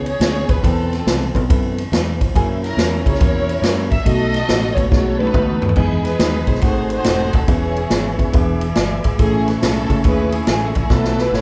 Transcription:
Already playing: fingered electric bass C#2, tine electric piano E4 G#4 B4
0.06 string section G#4 C#5, ride
0.20 fingered electric bass D2, tine electric piano B3 C#4 E4 G#4 C#5, snare, ride
0.49 fingered electric bass D#2, string section B4, kick, ride
0.63 fingered electric bass E2, tine electric piano E3 B3 C4 E4 A4 B4, string section C4 A4, kick, ride
0.93 snare, ride
1.06 fingered electric bass C2, tine electric piano B3 C4 E4 A4 B4, snare, ride
1.33 fingered electric bass B1, tine electric piano B3 C4 E4 A4 B4, kick, ride
1.48 fingered electric bass F#2, tine electric piano B3 C4 E4 A4 B4, kick, ride
1.78 ride
1.92 fingered electric bass E2, tine electric piano D#4 B4, snare, ride
2.20 tine electric piano E4 C5, kick, ride
2.35 fingered electric bass F#2, tine electric piano A#3 C#4 E4 F#4 A#4, string section C#4 E4 G#4, kick, ride
2.64 string section C#4 E4 A#4, snare, ride
2.77 fingered electric bass E2, tine electric piano A#3 C#4 E4 F#4 A#4, snare, ride
3.04 fingered electric bass C#2, tine electric piano A#3 C#4 E4 F#4 G#4, string section E4 A#4 C#5, kick, ride
3.15 snare
3.20 fingered electric bass E2, tine electric piano A#3 C#4 E4 F#4 A#4, kick, ride
3.49 ride
3.62 fingered electric bass F#2, tine electric piano A#3 C#4 E4 F#4 A#4, snare, ride
3.92 string section E5, kick, ride
4.05 fingered electric bass B1, tine electric piano B2 A3 B3 D#4 F#4 A4, string section F#4 A4 D#5, kick, ride
4.34 snare, ride
4.48 fingered electric bass A1, tine electric piano A3 B3 D#4 F#4 A4, snare, ride
4.75 fingered electric bass G#1, tine electric piano A3 B3 D#4 F#4 B4, string section C#5, kick, ride
4.90 fingered electric bass B1, tine electric piano A3 B3 D#4 F#4 G#4, string section F#4 A4 C#5, kick, snare
5.19 string section D#4 F#4 B4, high tom
5.27 high tom
5.34 fingered electric bass D2, tine electric piano A3 B3 D#4 F#4 B4, kick, mid tom
5.62 fingered electric bass D#2, floor tom
5.69 floor tom
5.75 fingered electric bass E2, tine electric piano E3 G#3 B3 D#4 E4 G#4, string section B3 D#4 G#4, tonewheel organ G#4 B4 D#5 B5, kick, crash
6.04 string section D#4 G#4 B4, snare, ride
6.19 fingered electric bass D#2, tine electric piano G#3 B3 D#4 E4 F#4, snare, ride
6.47 fingered electric bass B1, tine electric piano G#3 B3 D#4 E4 G#4, string section C5, kick, ride
6.55 snare
6.61 fingered electric bass G#1, tine electric piano G#2 A3 C4 D#4 F#4 G#4, string section D#4 F#4 C5, tonewheel organ A4 F#5 G#5 C6, kick, ride
6.90 string section D#4 F#4 C5, ride
7.04 fingered electric bass E1, tine electric piano A3 C4 D#4 F#4 A4, snare, ride
7.33 fingered electric bass D#1, string section A4, kick, ride
7.47 fingered electric bass E1, tine electric piano E3 B3 C#4 E4 G#4 B4, string section B3 C#4 G#4, tonewheel organ B4 E5 C#6, kick, ride
7.76 ride
7.90 fingered electric bass G#1, tine electric piano B3 C#4 E4 G#4 C#5, snare, ride
8.17 fingered electric bass F#1, tine electric piano B3 C#4 E4 G#4 B4, kick, ride
8.32 fingered electric bass E1, tine electric piano E3 B3 D4 E4 G#4 B4, tonewheel organ D6, kick, ride
8.61 ride
8.75 fingered electric bass G1, tine electric piano F#4 D5, snare, ride
9.04 fingered electric bass G#1, tine electric piano G#4 E5, kick, ride
9.18 fingered electric bass A1, tine electric piano A2 A3 C#4 E4 G#4 A4, string section C#4 E4 G#4, kick, ride
9.22 tonewheel organ A3 C#6
9.47 string section B4, snare, ride
9.61 fingered electric bass B1, tine electric piano A3 C#4 E4 G#4 A4, string section C#4 E4 A4, snare, ride
9.89 fingered electric bass C#2, tine electric piano A3 C#4 E4 G#4 A4, kick, ride
10.04 fingered electric bass D#2, tine electric piano A3 C#4 E4 G#4 B4, string section E4 G#4 B4, kick, ride
10.32 string section G#4, ride
10.47 fingered electric bass A1, tine electric piano A3 C#4 E4 G#4 A4, string section G#4, snare, ride
10.75 fingered electric bass A#1, string section G#4, kick, ride
10.89 fingered electric bass B1, tine electric piano B2 A3 B3 E4 F#4 A4, string section E4 F#4 A4, tonewheel organ A4 F#5 B5, kick, snare
11.04 snare
11.18 string section B4, snare
11.32 fingered electric bass G#1, tine electric piano A3 B3 E4 F#4 A4, string section C#5, snare

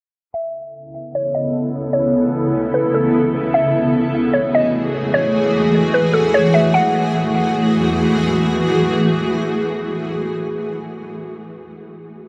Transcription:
0.34 ambient pad C#3 B3 E4 A4, synth pluck E5
1.15 synth pluck C#5
1.35 synth pluck D#5
1.93 synth pluck C#5
2.74 synth pluck B4
2.94 synth pluck A4
3.54 ambient pad E3 A3 F#4 G#4, synth pluck E5
4.33 synth pluck C#5
4.55 synth pluck D#5
5.14 synth pluck C#5
5.94 synth pluck B4
6.13 synth pluck A4
6.34 synth pluck C#5
6.54 synth pluck E5
6.74 ambient pad E3 A3 F#4 G#4, synth pluck F#5

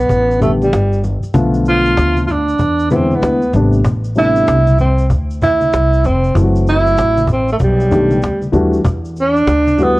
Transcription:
Already playing: tenor saxophone B3
0.09 upright bass A1, cajon bass, shaker
0.31 shaker
0.40 grand piano D3 G3 A3 B3 G4, tenor saxophone A3, cajon bass, low conga, shaker
0.62 tenor saxophone G3, high conga, shaker
0.73 upright bass G1, cajon slap, shaker
0.93 shaker
1.04 cajon slap, low conga, shaker
1.23 muted upright bass stroke, shaker
1.34 upright bass B1, grand piano D3 F3 A3 B3 F4, cajon bass, shaker
1.54 shaker
1.65 tenor saxophone F4, cajon slap, shaker
1.85 shaker
1.97 upright bass D2, cajon slap, high conga, shaker
2.17 high conga, shaker
2.27 tenor saxophone F4, cajon slap, low conga, shaker
2.32 tenor saxophone D4
2.48 shaker
2.59 upright bass E2, cajon bass, shaker
2.79 shaker
2.90 grand piano D3 E3 G#3 B3 E4, tenor saxophone B3, cajon bass, low conga, shaker
2.95 tenor saxophone C4
3.11 high conga, shaker
3.15 tenor saxophone B3
3.22 upright bass D2, cajon slap, shaker
3.42 shaker
3.53 upright bass G#1, grand piano C3 G3 A3 B3 D4, low conga, shaker
3.73 shaker
3.84 upright bass A1, cajon bass, shaker
4.04 shaker
4.16 grand piano C3 G3 A3 B3 D4, tenor saxophone E4, cajon slap, shaker
4.36 shaker
4.47 upright bass C2, cajon slap, high conga, shaker
4.67 high conga, shaker
4.79 tenor saxophone C4, low conga, shaker
4.98 shaker
5.10 upright bass D2, cajon bass, shaker
5.31 shaker
5.42 tenor saxophone E4, cajon bass, low conga, shaker
5.61 high conga, shaker
5.73 upright bass C2, cajon slap, shaker
5.93 shaker
6.04 upright bass F1, tenor saxophone C4, low conga, shaker
6.24 shaker
6.35 upright bass F#1, grand piano E3 F#3 A3 C4 E4, cajon bass, shaker
6.43 grand piano F#4
6.55 shaker
6.67 tenor saxophone E4, shaker
6.86 shaker
6.97 upright bass A1, cajon slap, shaker
7.17 high conga, shaker
7.27 cajon bass, cajon slap, low conga, shaker
7.33 tenor saxophone C4
7.48 shaker
7.52 tenor saxophone A3
7.59 upright bass B1, cajon bass, shaker
7.63 tenor saxophone G3
7.80 shaker
7.90 grand piano D#3 A3 B3 D4 G4, cajon bass, low conga, shaker
8.11 high conga, shaker
8.22 upright bass D2, cajon slap, shaker
8.42 high conga, shaker
8.52 upright bass D#2, grand piano E3 G3 A3 D4 F#4, high conga, low conga, shaker
8.73 shaker
8.85 upright bass E2, cajon bass, shaker
9.05 shaker
9.16 cajon slap, shaker
9.21 tenor saxophone D4
9.36 shaker
9.47 upright bass D2, cajon slap, high conga, shaker
9.67 high conga, shaker
9.78 grand piano E3 G3 A3 D4 F#4, low conga, shaker
9.83 tenor saxophone B3

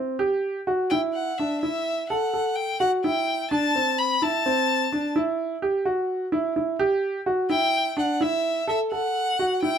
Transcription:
Already playing: grand piano C4
0.19 grand piano G4
0.67 grand piano F#4
0.90 grand piano E4, violin G5
1.14 violin F#5
1.38 grand piano D4, violin E5
1.62 grand piano E4, violin E5
2.09 grand piano A4, violin F#5
2.34 grand piano A4
2.56 violin G5
2.80 grand piano F#4, violin F#5
3.04 grand piano E4, violin G5
3.51 grand piano D4, violin A5
3.75 grand piano C4
3.98 violin B5
4.22 grand piano E4, violin A5
4.46 grand piano C4
4.92 grand piano D4
5.16 grand piano E4
5.62 grand piano G4
5.85 grand piano F#4
6.32 grand piano E4
6.56 grand piano E4
6.79 grand piano G4
7.26 grand piano F#4
7.50 grand piano E4, violin G5
7.97 grand piano D4, violin F#5
8.21 grand piano E4, violin E5
8.68 grand piano A4, violin E5
8.92 grand piano A4, violin F#5
9.39 grand piano F#4
9.63 grand piano E4, violin G5

